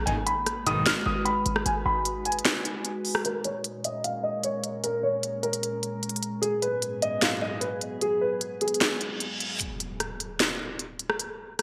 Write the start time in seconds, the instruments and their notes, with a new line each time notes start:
0.06 808-style bass G#1, analog polysynth B1 G#2 D#3, ambient pad G#3 D#4 F#4 B4, grand piano G#5, closed hi-hat
0.26 grand piano B5, closed hi-hat
0.46 cross-stick, closed hi-hat
0.66 analog polysynth B1 G#2 D#3, grand piano D#6, closed hi-hat
0.86 grand piano F6, finger snap, snare, closed hi-hat
1.06 808-style bass G#1, grand piano D#6
1.25 grand piano B5, closed hi-hat
1.46 808-style bass G#1, closed hi-hat
1.56 cross-stick
1.66 808-style bass G#1, grand piano G#5, closed hi-hat
1.86 808-style bass G#1, grand piano B5
2.05 closed hi-hat
2.25 grand piano G#5, closed hi-hat
2.32 closed hi-hat
2.39 closed hi-hat
2.45 finger snap, snare, closed hi-hat
2.65 closed hi-hat
2.85 closed hi-hat
3.05 open hi-hat
3.15 cross-stick
3.25 ambient pad A#2 G#3 C#4 A#4, grand piano A#4, closed hi-hat
3.44 grand piano C#5, closed hi-hat
3.64 closed hi-hat
3.84 grand piano D#5, closed hi-hat
4.04 grand piano F5, closed hi-hat
4.23 grand piano D#5
4.44 grand piano C#5, closed hi-hat
4.64 closed hi-hat
4.84 grand piano A#4, closed hi-hat
5.03 grand piano C#5
5.23 closed hi-hat
5.43 grand piano A#4, closed hi-hat
5.53 closed hi-hat
5.63 closed hi-hat
5.83 closed hi-hat
6.03 closed hi-hat
6.09 closed hi-hat
6.16 closed hi-hat
6.23 closed hi-hat
6.42 ambient pad G#2 F#3 B3 G#4, grand piano G#4, closed hi-hat
6.62 grand piano B4, closed hi-hat
6.82 closed hi-hat
7.02 grand piano D#5, closed hi-hat
7.22 grand piano F5, finger snap, snare, closed hi-hat
7.42 grand piano D#5
7.61 grand piano B4, closed hi-hat
7.81 closed hi-hat
8.01 grand piano G#4, closed hi-hat
8.21 grand piano B4
8.41 closed hi-hat
8.61 grand piano G#4, closed hi-hat
8.68 closed hi-hat
8.74 closed hi-hat
8.81 finger snap, snare, closed hi-hat, reverse cymbal
9.01 closed hi-hat
9.20 closed hi-hat
9.40 closed hi-hat
9.60 closed hi-hat, impact
9.80 closed hi-hat
10.00 cross-stick, closed hi-hat
10.20 closed hi-hat
10.40 finger snap, snare, closed hi-hat
10.79 closed hi-hat
10.99 closed hi-hat
11.10 cross-stick
11.20 closed hi-hat
11.59 cross-stick, closed hi-hat